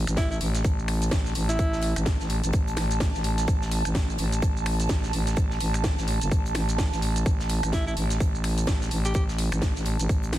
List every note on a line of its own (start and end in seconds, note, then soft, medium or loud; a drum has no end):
0.00 10.38 A5 medium
0.07 0.39 A1 loud
0.07 finger snap medium
0.07 closed hi-hat medium
0.07 shaker medium
0.17 0.26 E4 medium
0.17 kick loud
0.17 snare loud
0.17 closed hi-hat medium
0.17 shaker medium
0.31 0.37 E4 medium
0.31 shaker soft
0.41 0.63 A1 loud
0.41 closed hi-hat medium
0.41 open hi-hat loud
0.55 snare medium
0.55 closed hi-hat medium
0.55 shaker medium
0.64 1.10 A1 loud
0.64 kick loud
0.64 closed hi-hat medium
0.64 shaker medium
0.79 shaker soft
0.88 finger snap medium
0.88 open hi-hat loud
0.88 open hi-hat medium
1.02 closed hi-hat medium
1.02 shaker medium
1.11 1.34 A1 loud
1.11 kick loud
1.11 snare loud
1.11 closed hi-hat medium
1.11 shaker medium
1.25 snare soft
1.25 shaker soft
1.35 1.57 A1 medium
1.35 closed hi-hat medium
1.35 open hi-hat loud
1.49 1.96 E4 loud
1.49 snare soft
1.49 closed hi-hat medium
1.49 shaker medium
1.59 1.94 A1 medium
1.59 kick loud
1.59 closed hi-hat medium
1.59 shaker medium
1.73 snare medium
1.73 shaker soft
1.81 closed hi-hat medium
1.81 open hi-hat loud
1.96 2.18 A1 loud
1.96 finger snap medium
1.96 closed hi-hat medium
1.96 shaker medium
2.06 kick loud
2.06 snare loud
2.06 closed hi-hat medium
2.06 shaker medium
2.20 2.41 A1 medium
2.20 snare soft
2.20 shaker soft
2.30 closed hi-hat medium
2.30 open hi-hat loud
2.44 2.52 A1 loud
2.44 closed hi-hat medium
2.44 shaker medium
2.53 2.75 A1 medium
2.53 kick loud
2.53 closed hi-hat medium
2.53 closed hi-hat soft
2.53 shaker medium
2.67 closed hi-hat soft
2.67 shaker soft
2.77 3.12 A1 loud
2.77 finger snap medium
2.77 snare medium
2.77 closed hi-hat medium
2.77 open hi-hat loud
2.91 closed hi-hat medium
2.91 shaker medium
3.00 kick loud
3.00 snare loud
3.00 closed hi-hat soft
3.00 closed hi-hat medium
3.00 shaker medium
3.14 3.46 A1 loud
3.14 snare medium
3.14 shaker soft
3.24 closed hi-hat medium
3.24 open hi-hat loud
3.38 snare soft
3.38 closed hi-hat medium
3.38 shaker medium
3.48 3.83 A1 loud
3.48 kick loud
3.48 closed hi-hat medium
3.48 shaker medium
3.62 snare medium
3.62 shaker soft
3.71 closed hi-hat medium
3.71 open hi-hat loud
3.85 4.17 A1 medium
3.85 finger snap medium
3.85 closed hi-hat medium
3.85 shaker medium
3.95 kick loud
3.95 snare loud
3.95 closed hi-hat medium
3.95 shaker medium
4.10 shaker soft
4.18 4.41 A1 loud
4.18 closed hi-hat medium
4.18 open hi-hat loud
4.32 closed hi-hat medium
4.32 shaker medium
4.42 4.88 A1 medium
4.42 kick loud
4.42 closed hi-hat medium
4.42 closed hi-hat soft
4.42 shaker medium
4.57 shaker soft
4.66 finger snap medium
4.66 open hi-hat medium
4.66 open hi-hat loud
4.80 closed hi-hat medium
4.80 shaker medium
4.89 5.12 A1 loud
4.89 kick loud
4.89 snare loud
4.89 closed hi-hat medium
4.89 shaker medium
5.03 snare soft
5.03 shaker soft
5.13 5.35 A1 medium
5.13 closed hi-hat medium
5.13 open hi-hat loud
5.27 snare soft
5.27 closed hi-hat medium
5.27 shaker medium
5.36 5.59 A1 medium
5.36 kick loud
5.36 closed hi-hat medium
5.36 closed hi-hat soft
5.36 shaker medium
5.50 snare soft
5.50 shaker soft
5.60 5.96 A1 medium
5.60 closed hi-hat medium
5.60 open hi-hat loud
5.74 finger snap medium
5.74 closed hi-hat medium
5.74 shaker medium
5.84 kick loud
5.84 snare loud
5.84 closed hi-hat soft
5.84 closed hi-hat medium
5.84 shaker medium
5.98 6.19 A1 loud
5.98 snare medium
5.98 shaker soft
6.07 closed hi-hat medium
6.07 open hi-hat loud
6.21 6.30 G1 loud
6.21 closed hi-hat medium
6.21 shaker medium
6.31 6.53 A1 medium
6.31 kick loud
6.31 closed hi-hat soft
6.31 closed hi-hat medium
6.31 shaker medium
6.46 closed hi-hat soft
6.46 shaker soft
6.55 6.90 A1 loud
6.55 finger snap medium
6.55 snare medium
6.55 closed hi-hat medium
6.55 open hi-hat loud
6.69 closed hi-hat medium
6.69 shaker medium
6.78 kick loud
6.78 snare loud
6.78 closed hi-hat medium
6.78 shaker medium
6.92 7.24 A1 loud
6.92 snare medium
6.92 shaker soft
7.02 closed hi-hat medium
7.02 open hi-hat loud
7.16 closed hi-hat medium
7.16 shaker medium
7.26 7.61 A1 medium
7.26 kick loud
7.26 closed hi-hat medium
7.26 shaker medium
7.40 snare medium
7.40 shaker soft
7.49 closed hi-hat medium
7.49 open hi-hat loud
7.63 7.95 A1 medium
7.63 finger snap medium
7.63 closed hi-hat medium
7.63 shaker medium
7.72 7.82 E4 medium
7.72 kick loud
7.72 snare loud
7.72 closed hi-hat medium
7.72 shaker medium
7.87 7.93 E4 medium
7.87 shaker soft
7.97 8.19 A1 loud
7.97 closed hi-hat medium
7.97 open hi-hat loud
8.10 snare medium
8.10 closed hi-hat medium
8.10 shaker medium
8.20 8.66 A1 medium
8.20 kick loud
8.20 closed hi-hat medium
8.20 shaker medium
8.35 shaker soft
8.44 finger snap medium
8.44 open hi-hat medium
8.44 open hi-hat loud
8.58 closed hi-hat medium
8.58 shaker medium
8.67 8.90 A1 loud
8.67 kick loud
8.67 snare loud
8.67 closed hi-hat medium
8.67 shaker medium
8.81 snare soft
8.81 shaker soft
8.91 9.13 A1 medium
8.91 closed hi-hat medium
8.91 open hi-hat loud
9.05 9.11 G4 medium
9.05 snare soft
9.05 closed hi-hat medium
9.05 shaker medium
9.14 9.50 A1 medium
9.14 9.24 G4 medium
9.14 kick loud
9.14 closed hi-hat medium
9.14 shaker medium
9.28 snare soft
9.28 shaker soft
9.38 closed hi-hat medium
9.38 open hi-hat loud
9.52 9.73 A1 loud
9.52 finger snap medium
9.52 closed hi-hat medium
9.52 shaker medium
9.62 kick loud
9.62 snare loud
9.62 closed hi-hat medium
9.62 shaker medium
9.75 9.97 A1 medium
9.75 snare soft
9.75 shaker soft
9.85 closed hi-hat medium
9.85 open hi-hat loud
9.99 10.08 A1 loud
9.99 closed hi-hat medium
9.99 shaker medium
10.09 10.31 A1 loud
10.09 kick loud
10.09 closed hi-hat medium
10.09 shaker medium
10.23 closed hi-hat soft
10.23 shaker soft
10.33 10.38 A1 loud
10.33 finger snap medium
10.33 snare medium
10.33 closed hi-hat medium
10.33 open hi-hat loud